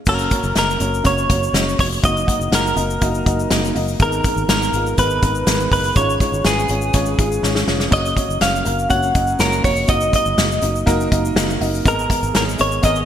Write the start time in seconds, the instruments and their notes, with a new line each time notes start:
0.06 fingered electric bass F#1, upright piano C#3 A#3 C#4 F#4 C#5, clean electric guitar A#4, kick, crash, shaker
0.19 shaker
0.31 upright piano A#3 C#4 F#4 C#5, kick, closed hi-hat, shaker
0.43 fingered electric bass F#1, shaker
0.55 fingered electric bass F#1, upright piano A#3 C#4 F#4 D#5, clean electric guitar A#4, snare, closed hi-hat, shaker
0.70 shaker
0.80 fingered electric bass F#1, upright piano A#3 C#4 F#4 C#5, closed hi-hat, shaker
0.94 shaker
1.04 fingered electric bass F#1, upright piano A#3 C#4 F#4 C#5, clean electric guitar C#5, kick, snare, closed hi-hat, shaker
1.18 shaker
1.29 fingered electric bass F#1, upright piano A#3 C#4 F#4 C#5, kick, closed hi-hat, shaker
1.43 shaker
1.53 fingered electric bass F#1, upright piano A#3 C#4 F#4 D#5, snare, closed hi-hat, shaker
1.69 shaker
1.79 fingered electric bass F1, upright piano A#3 C#4 F#4 C#5, clean electric guitar C#5, kick, open hi-hat, shaker
1.92 shaker
2.03 fingered electric bass F#1, upright piano F#3 A#3 D#4 F#4 D#5, clean electric guitar D#5, kick, closed hi-hat, shaker
2.17 shaker
2.26 upright piano A#3 D#4 F#4 F#5, kick, closed hi-hat, shaker
2.39 fingered electric bass F#1, shaker
2.51 fingered electric bass F#1, upright piano A#3 D#4 F#4 F#5, clean electric guitar A#4, snare, closed hi-hat, shaker
2.67 shaker
2.76 fingered electric bass F#1, upright piano A#3 D#4 F#4 D#5, closed hi-hat, shaker
2.90 shaker
3.01 fingered electric bass F#1, upright piano A#3 D#4 F#4 D#5, kick, closed hi-hat, shaker
3.14 shaker
3.25 fingered electric bass F#1, upright piano A#3 D#4 F#4 D#5, kick, closed hi-hat, shaker
3.40 shaker
3.50 fingered electric bass F#1, upright piano A#3 D#4 F#4 D#5, snare, closed hi-hat, shaker
3.65 shaker
3.75 fingered electric bass F#1, upright piano A#3 D#4 F#4 D#5, open hi-hat, shaker
3.88 shaker
4.00 fingered electric bass G#1, upright piano G#2 D#3 G#3 B3 D#4 A#4, clean electric guitar A#4, kick, closed hi-hat, shaker
4.12 shaker
4.24 upright piano G#3 B3 D#4 A#4, kick, closed hi-hat, shaker
4.36 fingered electric bass G#1, shaker
4.48 fingered electric bass G#1, upright piano G#3 B3 D#4 A#4, clean electric guitar A#4, snare, closed hi-hat, shaker
4.62 shaker
4.73 fingered electric bass G#1, upright piano G#3 B3 D#4 F4, closed hi-hat, shaker
4.87 shaker
4.98 fingered electric bass G#1, upright piano G#3 B3 D#4 A#4, clean electric guitar B4, kick, closed hi-hat, shaker
5.10 shaker
5.22 fingered electric bass G#1, upright piano G#3 B3 D#4 A#4, kick, closed hi-hat, shaker
5.35 shaker
5.47 fingered electric bass G#1, upright piano G#3 B3 D#4 A#4, snare, closed hi-hat, shaker
5.60 shaker
5.71 fingered electric bass F#1, upright piano G#3 B3 D#4 A#4, clean electric guitar B4, kick, open hi-hat, shaker
5.84 shaker
5.96 fingered electric bass G#1, upright piano G#2 G#3 C#4 F4 C#5, clean electric guitar C#5, kick, closed hi-hat, shaker
6.10 shaker
6.20 upright piano G#3 C#4 F4 C#5, kick, closed hi-hat, shaker
6.32 fingered electric bass G#1, shaker
6.44 fingered electric bass G#1, upright piano G#3 C#4 F4 B4, clean electric guitar G#4, snare, closed hi-hat, shaker
6.59 shaker
6.68 fingered electric bass G#1, upright piano G#3 C#4 F4 C#5, closed hi-hat, shaker
6.81 shaker
6.93 fingered electric bass G#1, upright piano G#3 C#4 F4 C#5, kick, snare, closed hi-hat, shaker
7.06 shaker
7.18 fingered electric bass G#1, upright piano G#3 C#4 F4 G#4, kick, closed hi-hat, shaker
7.32 shaker
7.42 fingered electric bass G#1, upright piano G#3 C#4 F4 C#5, snare, shaker
7.55 snare, shaker
7.67 fingered electric bass F1, upright piano G#3 C#4 F4 C#5, snare
7.80 snare, shaker
7.91 fingered electric bass F#1, upright piano C#3 A#3 C#4 F#4 C#5, clean electric guitar D#5, kick, splash, shaker
8.06 shaker
8.16 upright piano A#3 C#4 F#4 C#5, kick, closed hi-hat, shaker
8.29 fingered electric bass F#1, shaker
8.41 fingered electric bass F#1, upright piano A#3 C#4 F#4 C#5, clean electric guitar F5, snare, closed hi-hat, shaker
8.56 shaker
8.65 fingered electric bass F#1, upright piano A#3 C#4 F#4 A#4, closed hi-hat, shaker
8.79 shaker
8.89 fingered electric bass F#1, upright piano A#3 C#4 F#4 C#5, clean electric guitar F#5, kick, closed hi-hat, shaker
9.03 shaker
9.14 fingered electric bass F#1, upright piano A#3 C#4 F#4 D#5, kick, closed hi-hat, shaker
9.27 shaker
9.39 fingered electric bass F#1, upright piano A#3 C#4 F#4 C#5, clean electric guitar A#4, snare, closed hi-hat, shaker
9.52 shaker
9.62 fingered electric bass F1, upright piano A#3 C#4 F#4 C#5, clean electric guitar C#5, kick, open hi-hat, shaker
9.76 shaker
9.88 fingered electric bass F#1, upright piano F#3 A#3 D#4 F#4 D#5, clean electric guitar D#5, kick, closed hi-hat, shaker
10.01 shaker
10.12 upright piano A#3 D#4 F#4 D#5, clean electric guitar D#5, kick, closed hi-hat, shaker
10.26 fingered electric bass F#1, shaker
10.37 fingered electric bass F#1, upright piano A#3 D#4 F#4 D#5, snare, closed hi-hat, shaker
10.51 shaker
10.62 fingered electric bass F#1, upright piano A#3 D#4 F#4 D#5, closed hi-hat, shaker
10.76 shaker
10.86 fingered electric bass F#1, upright piano A#3 D#4 F#4 A#4, kick, snare, closed hi-hat, shaker
11.00 shaker
11.11 fingered electric bass F#1, upright piano A#3 D#4 F#4 D#5, kick, closed hi-hat, shaker
11.25 shaker
11.36 fingered electric bass F#1, upright piano A#3 D#4 F#4 D#5, snare, closed hi-hat, shaker
11.50 shaker
11.61 fingered electric bass F#1, upright piano A#3 D#4 F#4 D#5 F#5, open hi-hat, shaker
11.75 shaker
11.85 fingered electric bass G#1, upright piano G#2 D#3 B3 G#4 A#4 D#5, clean electric guitar A#4, kick, closed hi-hat, shaker
11.99 shaker
12.09 upright piano B3 G#4 A#4 D#5, kick, closed hi-hat, shaker
12.23 fingered electric bass G#1, shaker
12.33 fingered electric bass G#1, upright piano B3 G#4 A#4 C#5, clean electric guitar A#4, snare, closed hi-hat, shaker
12.49 shaker
12.58 fingered electric bass G#1, upright piano B3 G#4 A#4 D#5, clean electric guitar C#5, closed hi-hat, shaker
12.72 shaker
12.82 fingered electric bass G#1, upright piano B3 G#4 A#4 D#5, clean electric guitar D#5, kick, snare, closed hi-hat, shaker
12.96 shaker